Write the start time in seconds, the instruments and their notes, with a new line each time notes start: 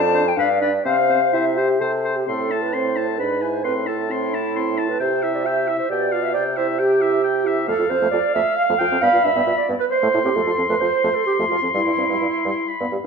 Already playing: bassoon F2, clarinet D5, flute A5
0.14 french horn D4, oboe C5
0.28 flute G5
0.36 bassoon G2, french horn D4, oboe B4, clarinet D5, flute F5
0.61 french horn D4, oboe B4, flute D5
0.84 bassoon C3, french horn C4, clarinet C5, oboe C5, flute F5
1.09 french horn C4, oboe C5
1.33 bassoon C3, french horn E4, oboe C5, flute E5
1.57 french horn G4, oboe C5
1.80 bassoon C3, french horn A4, oboe C5
2.05 oboe C5
2.16 french horn G4, flute G4, clarinet G4
2.27 bassoon A2, french horn C4, flute A4, clarinet A4, oboe C6
2.51 french horn E4, oboe A5
2.62 flute B4, clarinet B4
2.73 french horn C4, clarinet C5, flute C5, oboe C6
2.96 french horn E4, oboe A5
3.07 flute A4, clarinet A4
3.17 bassoon G#2, french horn D4, flute B4, clarinet B4, oboe B5
3.41 french horn E4, oboe G#5
3.52 flute C5, clarinet C5
3.63 bassoon A2, french horn C4, flute B4, clarinet B4, oboe C6
3.86 french horn E4, flute A4, clarinet A4, oboe A5
4.09 french horn C4, flute E4, clarinet E4, oboe C6
4.34 french horn E4, oboe A5
4.56 french horn C4, oboe C6
4.78 french horn E4, oboe A5
4.88 flute B4, clarinet B4
5.00 bassoon C3, french horn G4, flute C5, clarinet C5, oboe G5
5.23 french horn E4, oboe E5
5.33 flute D5, clarinet D5
5.44 french horn G4, flute E5, clarinet E5, oboe G5
5.68 french horn E4, oboe E5
5.79 clarinet C5, flute C5
5.89 bassoon B2, french horn G4, flute D5, clarinet D5, oboe G5
6.12 french horn F4, oboe F5
6.23 flute E5, clarinet E5
6.34 bassoon C3, french horn G4, clarinet D5, flute D5, oboe G5
6.55 french horn E4, flute C5, clarinet C5, oboe E5
6.78 flute G4, french horn G4, clarinet G4, oboe G5
7.01 french horn E4, oboe E5
7.23 french horn G4, oboe G5
7.46 french horn E4, oboe E5
7.67 bassoon F2, french horn A3, clarinet A4, flute A4, oboe F5
7.78 bassoon F2, french horn F4
7.90 bassoon F2, french horn C4, clarinet C5, flute C5
8.02 bassoon F2, french horn A3
8.11 bassoon F2, french horn F4, clarinet D5, flute D5
8.34 bassoon F2, french horn A3, clarinet E5, flute E5
8.56 clarinet F5, flute F5
8.69 bassoon F2, french horn A3
8.79 bassoon F2, french horn F4, clarinet G5, flute G5
8.91 bassoon F2, french horn C4
9.01 bassoon G2, french horn B3, clarinet F5, flute F5, oboe B5
9.13 bassoon G2, french horn F4
9.23 bassoon G2, french horn D4, clarinet E5, flute E5
9.35 bassoon G2, french horn B3
9.46 bassoon G2, french horn F4
9.57 clarinet D5, flute D5
9.68 bassoon G2, french horn B3
9.79 flute B4, clarinet B4
9.90 flute C5, clarinet C5, oboe C6
10.02 bassoon A2, french horn A3
10.14 bassoon A2, french horn E4
10.23 bassoon A2, french horn C4, flute G4, clarinet G4
10.35 bassoon F2, french horn A3, clarinet A4, flute A4
10.46 bassoon F2, french horn F4
10.58 bassoon F2, french horn C4
10.69 bassoon F2, french horn A3, clarinet B4, flute B4
10.80 bassoon F2, french horn F4, clarinet C5, flute C5
11.03 bassoon F2, french horn A3
11.14 flute A4, clarinet A4
11.26 flute G4, clarinet G4
11.39 bassoon F2, french horn A3
11.50 bassoon F2, clarinet F4, flute F4, french horn F4
11.62 bassoon F2, french horn C4
11.73 bassoon G2, french horn G3, clarinet E4, flute E4
11.85 bassoon G2, french horn E4
11.98 bassoon G2, french horn C4
12.09 bassoon G2, french horn G3
12.21 bassoon G2, french horn E4
12.45 bassoon G2, french horn G3
12.69 oboe B5
12.80 bassoon G2, french horn B3
12.92 bassoon G2, french horn G4